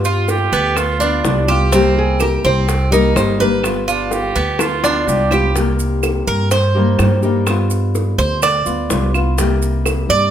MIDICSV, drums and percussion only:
0, 0, Header, 1, 2, 480
1, 0, Start_track
1, 0, Key_signature, -3, "minor"
1, 0, Tempo, 478469
1, 1729, Time_signature, 4, 2, 24, 8
1, 10340, End_track
2, 0, Start_track
2, 0, Title_t, "Drums"
2, 45, Note_on_c, 9, 70, 57
2, 51, Note_on_c, 9, 60, 31
2, 145, Note_off_c, 9, 70, 0
2, 151, Note_off_c, 9, 60, 0
2, 285, Note_on_c, 9, 60, 57
2, 285, Note_on_c, 9, 70, 69
2, 386, Note_off_c, 9, 60, 0
2, 386, Note_off_c, 9, 70, 0
2, 526, Note_on_c, 9, 60, 35
2, 532, Note_on_c, 9, 70, 29
2, 626, Note_off_c, 9, 60, 0
2, 632, Note_off_c, 9, 70, 0
2, 762, Note_on_c, 9, 75, 66
2, 769, Note_on_c, 9, 60, 69
2, 774, Note_on_c, 9, 70, 66
2, 862, Note_off_c, 9, 75, 0
2, 869, Note_off_c, 9, 60, 0
2, 874, Note_off_c, 9, 70, 0
2, 1014, Note_on_c, 9, 70, 58
2, 1115, Note_off_c, 9, 70, 0
2, 1249, Note_on_c, 9, 60, 66
2, 1249, Note_on_c, 9, 61, 80
2, 1252, Note_on_c, 9, 70, 60
2, 1349, Note_off_c, 9, 60, 0
2, 1349, Note_off_c, 9, 61, 0
2, 1353, Note_off_c, 9, 70, 0
2, 1486, Note_on_c, 9, 70, 27
2, 1488, Note_on_c, 9, 75, 68
2, 1489, Note_on_c, 9, 60, 34
2, 1586, Note_off_c, 9, 70, 0
2, 1588, Note_off_c, 9, 75, 0
2, 1589, Note_off_c, 9, 60, 0
2, 1729, Note_on_c, 9, 70, 71
2, 1730, Note_on_c, 9, 60, 67
2, 1830, Note_off_c, 9, 60, 0
2, 1830, Note_off_c, 9, 70, 0
2, 2206, Note_on_c, 9, 75, 61
2, 2207, Note_on_c, 9, 70, 71
2, 2213, Note_on_c, 9, 60, 57
2, 2306, Note_off_c, 9, 75, 0
2, 2308, Note_off_c, 9, 70, 0
2, 2313, Note_off_c, 9, 60, 0
2, 2452, Note_on_c, 9, 70, 28
2, 2553, Note_off_c, 9, 70, 0
2, 2695, Note_on_c, 9, 60, 70
2, 2695, Note_on_c, 9, 70, 66
2, 2795, Note_off_c, 9, 60, 0
2, 2796, Note_off_c, 9, 70, 0
2, 2941, Note_on_c, 9, 70, 62
2, 3041, Note_off_c, 9, 70, 0
2, 3170, Note_on_c, 9, 75, 63
2, 3172, Note_on_c, 9, 60, 71
2, 3172, Note_on_c, 9, 61, 75
2, 3180, Note_on_c, 9, 70, 64
2, 3271, Note_off_c, 9, 75, 0
2, 3272, Note_off_c, 9, 60, 0
2, 3272, Note_off_c, 9, 61, 0
2, 3280, Note_off_c, 9, 70, 0
2, 3421, Note_on_c, 9, 70, 28
2, 3521, Note_off_c, 9, 70, 0
2, 3647, Note_on_c, 9, 75, 64
2, 3652, Note_on_c, 9, 60, 66
2, 3662, Note_on_c, 9, 70, 73
2, 3747, Note_off_c, 9, 75, 0
2, 3752, Note_off_c, 9, 60, 0
2, 3762, Note_off_c, 9, 70, 0
2, 3890, Note_on_c, 9, 60, 32
2, 3899, Note_on_c, 9, 70, 59
2, 3990, Note_off_c, 9, 60, 0
2, 3999, Note_off_c, 9, 70, 0
2, 4126, Note_on_c, 9, 60, 60
2, 4135, Note_on_c, 9, 70, 70
2, 4226, Note_off_c, 9, 60, 0
2, 4235, Note_off_c, 9, 70, 0
2, 4371, Note_on_c, 9, 60, 35
2, 4377, Note_on_c, 9, 70, 26
2, 4471, Note_off_c, 9, 60, 0
2, 4477, Note_off_c, 9, 70, 0
2, 4605, Note_on_c, 9, 60, 103
2, 4606, Note_on_c, 9, 75, 66
2, 4619, Note_on_c, 9, 70, 64
2, 4706, Note_off_c, 9, 60, 0
2, 4707, Note_off_c, 9, 75, 0
2, 4719, Note_off_c, 9, 70, 0
2, 4851, Note_on_c, 9, 60, 101
2, 4860, Note_on_c, 9, 70, 61
2, 4951, Note_off_c, 9, 60, 0
2, 4960, Note_off_c, 9, 70, 0
2, 5092, Note_on_c, 9, 61, 68
2, 5102, Note_on_c, 9, 70, 64
2, 5193, Note_off_c, 9, 61, 0
2, 5202, Note_off_c, 9, 70, 0
2, 5325, Note_on_c, 9, 75, 64
2, 5330, Note_on_c, 9, 61, 91
2, 5345, Note_on_c, 9, 70, 27
2, 5426, Note_off_c, 9, 75, 0
2, 5430, Note_off_c, 9, 61, 0
2, 5445, Note_off_c, 9, 70, 0
2, 5574, Note_on_c, 9, 60, 65
2, 5578, Note_on_c, 9, 70, 72
2, 5674, Note_off_c, 9, 60, 0
2, 5678, Note_off_c, 9, 70, 0
2, 5813, Note_on_c, 9, 70, 57
2, 5913, Note_off_c, 9, 70, 0
2, 6049, Note_on_c, 9, 75, 61
2, 6050, Note_on_c, 9, 70, 68
2, 6053, Note_on_c, 9, 60, 61
2, 6149, Note_off_c, 9, 75, 0
2, 6151, Note_off_c, 9, 70, 0
2, 6153, Note_off_c, 9, 60, 0
2, 6295, Note_on_c, 9, 70, 27
2, 6395, Note_off_c, 9, 70, 0
2, 6533, Note_on_c, 9, 60, 67
2, 6533, Note_on_c, 9, 70, 69
2, 6633, Note_off_c, 9, 70, 0
2, 6634, Note_off_c, 9, 60, 0
2, 7009, Note_on_c, 9, 75, 65
2, 7013, Note_on_c, 9, 60, 66
2, 7013, Note_on_c, 9, 61, 79
2, 7015, Note_on_c, 9, 70, 64
2, 7109, Note_off_c, 9, 75, 0
2, 7113, Note_off_c, 9, 60, 0
2, 7113, Note_off_c, 9, 61, 0
2, 7116, Note_off_c, 9, 70, 0
2, 7251, Note_on_c, 9, 70, 27
2, 7351, Note_off_c, 9, 70, 0
2, 7489, Note_on_c, 9, 75, 62
2, 7493, Note_on_c, 9, 60, 72
2, 7493, Note_on_c, 9, 70, 69
2, 7590, Note_off_c, 9, 75, 0
2, 7593, Note_off_c, 9, 60, 0
2, 7593, Note_off_c, 9, 70, 0
2, 7728, Note_on_c, 9, 70, 56
2, 7735, Note_on_c, 9, 60, 30
2, 7828, Note_off_c, 9, 70, 0
2, 7836, Note_off_c, 9, 60, 0
2, 7976, Note_on_c, 9, 60, 55
2, 7976, Note_on_c, 9, 70, 64
2, 8077, Note_off_c, 9, 60, 0
2, 8077, Note_off_c, 9, 70, 0
2, 8216, Note_on_c, 9, 70, 27
2, 8218, Note_on_c, 9, 60, 36
2, 8316, Note_off_c, 9, 70, 0
2, 8319, Note_off_c, 9, 60, 0
2, 8451, Note_on_c, 9, 70, 70
2, 8451, Note_on_c, 9, 75, 67
2, 8456, Note_on_c, 9, 60, 68
2, 8551, Note_off_c, 9, 70, 0
2, 8551, Note_off_c, 9, 75, 0
2, 8557, Note_off_c, 9, 60, 0
2, 8690, Note_on_c, 9, 70, 61
2, 8790, Note_off_c, 9, 70, 0
2, 8930, Note_on_c, 9, 60, 68
2, 8930, Note_on_c, 9, 61, 84
2, 8932, Note_on_c, 9, 70, 66
2, 9031, Note_off_c, 9, 60, 0
2, 9031, Note_off_c, 9, 61, 0
2, 9033, Note_off_c, 9, 70, 0
2, 9169, Note_on_c, 9, 60, 33
2, 9174, Note_on_c, 9, 75, 72
2, 9178, Note_on_c, 9, 70, 27
2, 9270, Note_off_c, 9, 60, 0
2, 9274, Note_off_c, 9, 75, 0
2, 9279, Note_off_c, 9, 70, 0
2, 9413, Note_on_c, 9, 70, 73
2, 9414, Note_on_c, 9, 60, 70
2, 9513, Note_off_c, 9, 70, 0
2, 9514, Note_off_c, 9, 60, 0
2, 9651, Note_on_c, 9, 70, 56
2, 9752, Note_off_c, 9, 70, 0
2, 9887, Note_on_c, 9, 75, 66
2, 9890, Note_on_c, 9, 60, 61
2, 9895, Note_on_c, 9, 70, 71
2, 9987, Note_off_c, 9, 75, 0
2, 9990, Note_off_c, 9, 60, 0
2, 9995, Note_off_c, 9, 70, 0
2, 10134, Note_on_c, 9, 70, 27
2, 10234, Note_off_c, 9, 70, 0
2, 10340, End_track
0, 0, End_of_file